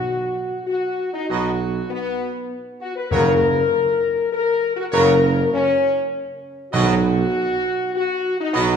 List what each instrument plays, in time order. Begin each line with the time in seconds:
Already playing: timpani B2, french horn section F#4
0.66 french horn section F#4
1.13 french horn section D#4
1.28 tuba B1, trombone section B2 F#3, french horn section F#4, trumpet section B4 D#5
1.90 french horn section B3
2.81 french horn section F#4
2.96 french horn section B4
3.10 tuba F#1, timpani F#2, trombone section C#3 F#3, french horn section A#4, trumpet section A#4 C#5
4.33 french horn section A#4
4.76 french horn section F#4
4.92 tuba F#1, trombone section C#3 F#3, french horn section A#4, trumpet section A#4 C#5
5.54 french horn section C#4
6.72 tuba B1, trombone section B2 F#3, timpani B2, french horn section F#4, trumpet section B4 D#5
7.94 french horn section F#4
8.40 french horn section D#4
8.53 tuba B1, trombone section B2 F#3, french horn section F#4, trumpet section B4 D#5